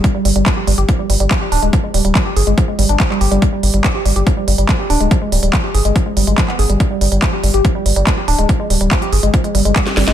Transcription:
<<
  \new Staff \with { instrumentName = "Synth arpeggio sound" } { \clef bass \time 4/4 \tempo 4 = 142 g16 g16 g16 g16 f16 g'16 g16 g'16 f16 g16 g16 g16 f16 g'16 d'16 aes16 | f16 aes16 g16 g16 f16 g'16 aes'16 aes16 f16 aes16 g16 d'16 f16 g16 g'16 g16 | r16 g16 g16 g16 f16 g'16 g16 g'16 f16 g16 g16 g16 f16 g'16 d'16 aes16 | f16 aes16 g16 g16 f16 g'16 aes'16 aes16 f16 aes16 g16 aes16 f16 b16 aes'16 g16 |
g16 g16 g16 g16 f16 g'16 g16 g'16 f16 g16 g16 g16 f16 g'16 d'16 aes16 | f16 aes16 g16 g16 f16 g'16 aes'16 aes16 f16 aes16 g16 aes16 g16 g'16 g16 aes16 | }
  \new Staff \with { instrumentName = "Analog synth bass" } { \clef bass \time 4/4 r8 g,,16 g,,16 r8 g,,16 g,,16 r8 g,,16 g,,16 r8 d,,16 d,,16 | r8 d,,16 d,,16 r8 g,,16 g,,16 r8 g,,16 g,,16 r8 g,,16 g,,16 | r8 g,,16 g,,16 r8 g,,16 g,,16 r8 g,,16 g,,16 r8 d,,16 d,,16 | r8 d,,16 d,,16 r8 g,,16 g,,16 r8 g,,16 g,,16 r8 g,,16 g,,16 |
r8 g,,16 g,,16 r8 g,,16 g,,16 r8 g,,16 g,,16 r8 d,,16 d,,16 | r8 d,,16 d,,16 r8 g,,16 g,,16 r8 g,,16 g,,16 r8 g,,16 g,,16 | }
  \new DrumStaff \with { instrumentName = "Drums" } \drummode { \time 4/4 <hh bd>8 hho16 hh16 <hc hh bd>8 hho16 hh16 <hh bd>8 hho16 hh16 <hc hh bd>8 hho16 hh16 | <hh bd>8 hho16 hh16 <hc hh bd>8 hho16 hh16 <hh bd>8 hho16 hh16 <hc hh bd>16 hc16 hho16 hh16 | <hh bd>8 hho16 hh16 <hc hh bd>8 hho16 hh16 <hh bd>8 hho16 hh16 <hc hh bd>8 hho16 hh16 | <hh bd>8 hho16 hh16 <hc hh bd>8 hho16 hh16 <hh bd>8 hho16 hh16 <hc hh bd>16 hc16 hho16 hh16 |
<hh bd>8 hho16 hh16 <hc hh bd>8 hho16 hh16 <hh bd>8 hho16 hh16 <hc hh bd>8 hho16 hh16 | <hh bd>8 hho16 hh16 <hc hh bd>16 hh16 hho16 hh16 <hh bd>16 hh16 hho16 hh16 <hc hh bd>16 <hh sn>16 <hho sn>16 <hh sn>16 | }
>>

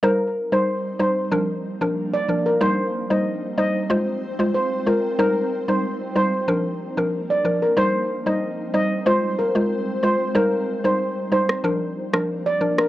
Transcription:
<<
  \new Staff \with { instrumentName = "Ambient pad" } { \time 4/4 \key c \minor \tempo 4 = 93 r1 | <c' c''>1~ | <c' c''>2 r2 | c''1~ |
c''2 r2 | }
  \new Staff \with { instrumentName = "Steel pan" } { \time 4/4 \key c \minor bes'16 r8 c''16 r8 c''16 r4. d''16 r16 bes'16 | c''16 r8 ees''16 r8 ees''16 r4 r16 c''16 r16 bes'16 r16 | bes'16 r8 c''16 r8 c''16 r4. d''16 r16 bes'16 | c''16 r8 ees''16 r8 ees''16 r16 c''16 r16 bes'16 r8. c''16 r16 |
bes'16 r8 c''16 r8 c''16 r4. d''16 r16 bes'16 | }
  \new Staff \with { instrumentName = "Synth pluck" } { \time 4/4 \key c \minor <g ees' c''>16 r8 <g ees' c''>16 r8 <g ees' c''>16 r16 <f d' bes'>16 r8 <f d' bes'>16 r8 <f d' bes'>16 r16 | <g ees' c''>16 r8 <g ees' c''>16 r8 <g ees' c''>16 r16 <aes f' c''>16 r8 <aes f' c''>16 r8 <aes f' c''>16 r16 | <g ees' c''>16 r8 <g ees' c''>16 r8 <g ees' c''>16 r16 <f d' bes'>16 r8 <f d' bes'>16 r8 <f d' bes'>16 r16 | <g ees' c''>16 r8 <g ees' c''>16 r8 <g ees' c''>16 r16 <aes f' c''>16 r8 <aes f' c''>16 r8 <aes f' c''>16 r16 |
<g ees' c''>16 r8 <g ees' c''>16 r8 <g ees' c''>16 r16 <f d' bes'>16 r8 <f d' bes'>16 r8 <f d' bes'>16 r16 | }
  \new DrumStaff \with { instrumentName = "Drums" } \drummode { \time 4/4 r4 r4 r4 r4 | r4 r4 r4 r4 | r4 r4 r4 r4 | r4 r4 r4 r4 |
r4 r8. ss16 r8. ss16 r8. ss16 | }
>>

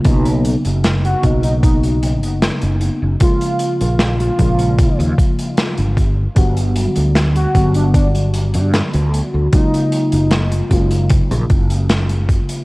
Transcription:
<<
  \new Staff \with { instrumentName = "Soft synth lead" } { \time 4/4 \key b \lydian \tempo 4 = 76 r4 r16 fis'8 dis'16 dis'16 r4. r16 | eis'4~ eis'16 eis'4 r4. r16 | r4 r16 fis'8 d'16 d'16 r4. r16 | dis'4 r2. | }
  \new Staff \with { instrumentName = "FM electric piano" } { \clef bass \time 4/4 \key b \lydian <cis fis ais b dis'>4. <cis fis ais b dis'>2~ <cis fis ais b dis'>8 | <cis eis gis ais eis'>4. <cis eis gis ais eis'>2 r8 | <d fis g b fis'>4. <d fis g b fis'>2~ <d fis g b fis'>8 | <cis fis gis ais eis'>4. <cis fis gis ais eis'>2~ <cis fis gis ais eis'>8 | }
  \new Staff \with { instrumentName = "Fretless electric bass" } { \clef bass \time 4/4 \key b \lydian b,,8 r16 fis,,8 r16 b,,4~ b,,16 fis,,16 r16 fis,,16 r16 fis,,16 | r8. ais,,8 r16 ais,,8 r16 dis,16 r8. g,,8 r16 | g,,8 r16 d,8 r16 g,,4~ g,,16 g,16 r16 d,16 r16 d,16 | r8. fis,,8 r16 fis,,8 r16 ais,,16 fis,,4 r8 | }
  \new DrumStaff \with { instrumentName = "Drums" } \drummode { \time 4/4 <hh bd>16 hh16 hh16 hh16 <hh sn>16 hh16 <hh bd>16 hh16 <hh bd>16 hh16 hh16 hh16 <hh sn>16 hh16 hh8 | <hh bd>16 hh16 hh16 hh16 <hh sn>16 hh16 <hh bd>16 hh16 <hh bd>16 hh16 <hh bd>16 hh16 <hh sn>16 hh16 <hh bd>8 | <hh bd>16 hh16 hh16 hh16 <hh sn>16 hh16 <hh bd>16 hh16 <hh bd>16 hh16 hh16 hh16 <hh sn>16 hh16 hh8 | <hh bd>16 hh16 hh16 hh16 <hh sn>16 hh16 <hh bd>16 hh16 <hh bd>16 hh16 <hh bd>16 hh16 <hh sn>16 hh16 <hh bd>16 hh16 | }
>>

